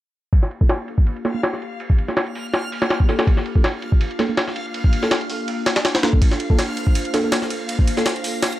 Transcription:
0.32 A#3 D4 F4 G4 F5 F6, kick, ride
0.43 snare
0.51 ride
0.61 A#3 D4 F4 A4, kick
0.69 snare, ride
0.88 ride
0.98 kick
1.07 ride
1.16 ride
1.25 A#3 D4 F4 A4, snare, ride
1.34 A#3 D4 F4 A4
1.43 snare, ride
1.53 snare
1.62 ride
1.80 ride
1.90 kick
1.98 ride
2.08 A#3 D4 F4 A4, snare
2.17 snare, ride
2.27 ride
2.35 open hi-hat
2.54 snare, ride
2.64 ride
2.72 open hi-hat
2.82 A#3 D4 F4 A4, snare, ride
2.90 snare, ride
3.00 kick
3.09 A#3 D4 F4 A4, snare, ride
3.19 A#3 D4 F4 A4, snare, ride
3.27 kick, ride
3.37 snare
3.46 ride
3.55 A#3 D4 F4 A4, kick
3.64 snare, ride
3.82 ride
3.92 kick
4.01 ride
4.11 ride
4.19 A#3 D4 F4 A4, snare, ride
4.29 A#3 D4 F4 A4
4.37 snare, ride
4.47 snare
4.56 ride
4.74 ride
4.84 kick
4.93 ride
5.03 A#3 D4 F4 A4, snare
5.11 snare, ride
5.21 ride
5.30 open hi-hat
5.48 ride
5.66 snare, ride
5.76 snare, ride
5.85 snare, ride
5.95 snare, ride
6.03 A#3 D4 F4 A4, snare, ride
6.13 kick
6.21 C5 A#6, kick, ride
6.32 snare
6.40 ride
6.50 A#3 D4 F4 A4, kick
6.59 snare, ride
6.77 ride
6.87 kick
6.95 ride
7.05 ride
7.14 A#3 D4 F4 A4, snare, ride
7.24 A#3 D4 F4 A4
7.32 snare, ride
7.42 snare
7.50 ride
7.69 ride
7.79 kick
7.87 ride
7.97 A#3 D4 F4 A4, snare
8.06 snare, ride
8.16 ride
8.24 open hi-hat
8.43 snare, ride
8.52 ride

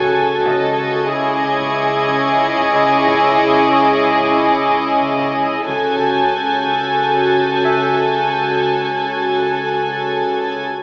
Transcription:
Already playing: C#2 C#3 C#4 F#4 A4 G#5
0.13 C#3
0.45 C#2 C#3 D#5 C#6 G#6, taiko
0.79 C#3
1.11 C#4 E4 G#4 D6
1.44 C#3
1.60 taiko
1.76 C#4
2.09 C#3, taiko
2.42 C#3
2.58 taiko
2.74 C#3 D#5 D#6
3.07 C#3, taiko
3.39 C#3
3.72 C#4 C#6
4.04 C#3
4.21 taiko
4.38 C#4
4.69 C#3, taiko
5.01 C#3
5.18 taiko
5.35 C#3
5.67 C#2 C#3 F#4 A4 G#5 F#6 G6, taiko
6.00 C#3
6.33 C#4
6.65 C#3
6.98 C#4
7.31 C#3
7.63 C#3 E5 E6
7.96 C#3
8.29 C#3
8.61 C#3 G#5 F#6
8.83 G#6
8.94 C#4
9.27 C#3
9.60 C#4
9.92 C#3
10.24 C#3
10.57 C#3

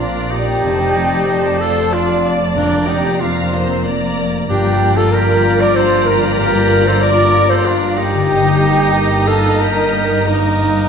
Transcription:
Already playing: A#1 A#2 F3 C4 F4 A#4 D5
0.00 D4 F4 C5 D5 F5 A#5
0.15 A#4
0.31 D#4 G4 G5
0.48 C4
0.64 F1 F2 A3 C4 D5 A5
0.81 C3
0.96 C4
1.28 A4 C5 D5 A5
1.44 C5
1.60 F4 A4 C5 D5 A5
1.76 A5
1.92 D4 F4 C5 D5 F5
2.08 A4
2.25 D5
2.40 C4
2.55 F2 A#3 D4 D5 A#5
2.72 C3
2.87 C4 D#4 G4 G5
3.20 C4 D4 F4 F5
3.37 C5
3.53 C5 D5
3.69 C6
3.85 A#3 C5 D5 A#5
4.33 C4
4.48 G1 G2 A#3 D4 F4 G4 D5 G5 A#5
4.65 F3
4.81 A#3
4.96 F4 A4 A5
5.12 G4 A#4 A#5
5.28 F4
5.43 F5
5.60 A#4 D5 D6
5.75 A4 C5 C6
5.91 F4
6.05 A#3 G4 A#4 A#5
6.38 G2 G4 A#4 A#5
6.55 A#3
6.86 A4 C5 C6
7.01 A#4 D5 D6
7.18 F4
7.34 F5
7.49 A4 C5 C6
7.65 D4 F4 F5
7.81 F4
7.97 A#3 D#4 G4 G5
8.14 D3
8.29 G1 G2 A#3 D#4 D#5 A#5
8.45 G3
8.61 A#3
8.78 D#4
9.10 D#4
9.26 F4 A4 D#5 A5
9.43 A#5
9.59 G4 A#4 A#5
9.77 D#4
9.92 A#3
10.11 G3
10.27 G2 A#3 D#4 D#5
10.45 A#3
10.61 G3
10.78 D#4

